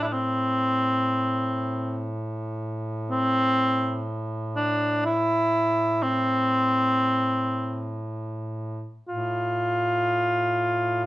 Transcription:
Already playing: A2
0.02 D4 E4
0.13 C4
3.11 C4
4.56 D4
5.06 E4
6.03 C4
9.08 A2 F4

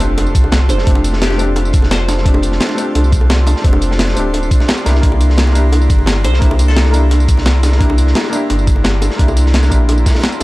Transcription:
Already playing: F1 A3 F4 G4 D5 A5 C6, sub drop
0.00 C4 D4 G4, closed hi-hat, tambourine
0.18 closed hi-hat, high bongo
0.27 tambourine
0.35 C2, kick, closed hi-hat, tambourine
0.44 high bongo
0.52 snare, closed hi-hat
0.69 F1 C5, closed hi-hat, tambourine, high bongo
0.78 snare
0.84 F1 A3 C4, kick, closed hi-hat
0.88 D4 G4
0.95 high bongo
1.04 closed hi-hat, tambourine
1.13 snare
1.22 G4, snare, closed hi-hat
1.30 G4, snare, high bongo
1.36 A3 C4 D4, closed hi-hat, tambourine
1.42 G4
1.56 closed hi-hat, high bongo
1.65 tambourine
1.73 F1, kick, closed hi-hat, tambourine
1.82 snare, high bongo
1.91 C5, snare, closed hi-hat
2.08 snare, closed hi-hat, tambourine, high bongo
2.17 snare
2.23 A3 C4, kick, closed hi-hat
2.27 D4 G4
2.34 high bongo
2.43 closed hi-hat, tambourine
2.52 snare
2.60 snare, closed hi-hat
2.69 snare, high bongo
2.75 A3 C4, closed hi-hat, tambourine
2.79 D4 G4
2.95 C2, closed hi-hat, high bongo
3.04 tambourine
3.12 kick, closed hi-hat, tambourine
3.21 high bongo
3.30 snare, closed hi-hat
3.47 closed hi-hat, tambourine, high bongo
3.56 snare
3.62 F1 A3 C4 D4, kick, closed hi-hat
3.68 G4
3.73 high bongo
3.81 closed hi-hat, tambourine
3.91 snare
3.99 snare, closed hi-hat
4.08 snare, high bongo
4.13 D1 A3 C4, closed hi-hat, tambourine
4.17 D4 G4
4.34 closed hi-hat, high bongo
4.43 tambourine
4.51 kick, closed hi-hat, tambourine
4.60 snare, high bongo
4.68 snare, closed hi-hat
4.78 tambourine
4.84 C2 A#3 D4 E4 G4 A#5, snare, closed hi-hat, tambourine, high bongo
4.95 snare
5.00 C2 A#3 D4, kick, closed hi-hat
5.04 E4 G4
5.12 high bongo
5.21 closed hi-hat, tambourine
5.30 snare
5.38 snare, closed hi-hat
5.47 snare, high bongo
5.52 A#3 D4, closed hi-hat, tambourine
5.56 E4 G4
5.72 closed hi-hat, high bongo
5.81 tambourine
5.90 G1, kick, closed hi-hat, tambourine
5.99 high bongo
6.06 snare, closed hi-hat
6.24 C2 C5, closed hi-hat, tambourine, high bongo
6.33 snare
6.39 C2 A#3 D4, kick, closed hi-hat
6.43 E4 G4
6.51 high bongo
6.59 closed hi-hat, tambourine
6.68 A4, snare
6.76 snare, closed hi-hat
6.85 snare, high bongo
6.91 A#3 D4 E4, closed hi-hat, tambourine
6.97 G4
7.11 closed hi-hat, high bongo
7.20 tambourine
7.28 C2, kick, closed hi-hat, tambourine
7.37 snare, high bongo
7.46 snare, closed hi-hat
7.63 snare, closed hi-hat, tambourine, high bongo
7.72 snare
7.78 A#3 D4, kick, closed hi-hat
7.82 E4 G4
7.90 high bongo
7.98 closed hi-hat, tambourine
8.07 snare
8.15 snare, closed hi-hat
8.24 snare, high bongo
8.30 A#3 D4, closed hi-hat, tambourine
8.34 E4 G4
8.50 G1, closed hi-hat, high bongo
8.59 tambourine
8.67 kick, closed hi-hat, tambourine
8.76 high bongo
8.84 snare, closed hi-hat
9.02 closed hi-hat, tambourine, high bongo
9.11 snare
9.16 C2 A#3 D4, kick, closed hi-hat
9.20 E4 G4
9.28 tambourine, high bongo
9.37 closed hi-hat, tambourine
9.46 snare
9.54 snare, closed hi-hat
9.63 snare, tambourine, high bongo
9.68 A#1 A#3 D4, kick, closed hi-hat, tambourine
9.72 E4 G4
9.89 closed hi-hat, high bongo
9.98 tambourine
10.06 kick, snare, closed hi-hat, tambourine
10.09 snare, closed hi-hat
10.15 snare, closed hi-hat, high bongo
10.19 snare, closed hi-hat
10.24 snare, closed hi-hat
10.32 tambourine

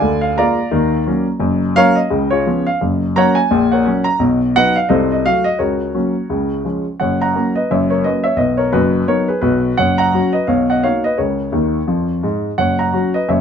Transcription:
Already playing: D5 F5 G#5
0.02 D2 D3
0.21 F5
0.37 G#3 A#3 F4 D5 F5 A#5
0.71 D#2 D#3
1.06 F#3 A#3 C#4
1.40 F#1 F#2
1.76 F#3 A#3 C#4 A#4 C#5 F5
1.95 D#5
2.10 C#2 C#3
2.30 F4 G#4 C#5
2.46 F3 B3 C#4
2.67 F5
2.81 F#1 F#2
3.16 F#3 A#3 C#4 C#5 F#5 A#5
3.35 G#5
3.51 A#1 A#2
3.72 A#4 C#5 F#5
3.85 F#3 C#4
4.04 A#5
4.19 B1 B2
4.56 F#3 B3 D#4 B4 D#5 F#5
4.76 F5
4.89 C2 C3 A4 C5 D#5
5.12 D#5
5.26 F#3 A3 F#4 F5
5.44 D#5
5.59 C#2 C#3 F#4 A#4 C#5
5.94 F#3 A#3 C#4
6.30 C#2 C#3
6.65 F3 G#3 C#4
7.00 F#1 F#2 C#5 F#5
7.21 F#5 A#5
7.35 F#3 A#3 C#4
7.55 B4 D#5
7.71 F#1 F#2 C#5 E5
7.90 A#4 C#5
8.04 F#3 A#3 C#4 B4 D#5
8.24 C#5 E5
8.36 B1 B2 B4 D#5
8.57 A#4 C#5
8.72 F#1 F#2 F#4 B4
9.08 F#3 B3 D#4 A#4 C#5
9.28 G#4 B4
9.41 B1 B2 F#4 B4
9.77 F#1 F#2 C#5 F#5
9.98 F#5 A#5
10.14 F#3 C#4 F#4
10.33 B4 D#5
10.47 B1 B2 C#5 F5
10.70 D#5 F#5
10.83 A#3 D#4 F#4 C#5 F5
11.04 B4 D#5
11.18 C#2 C#3 A#4 C#5
11.52 D#2 D#3
11.87 F2 F3
12.23 G#2 G#3
12.58 F#1 F#2 C#5 F#5
12.79 F#5 A#5
12.93 F#3 C#4 F#4
13.14 B4 D#5
13.28 F#1 F#2 C#5 E5

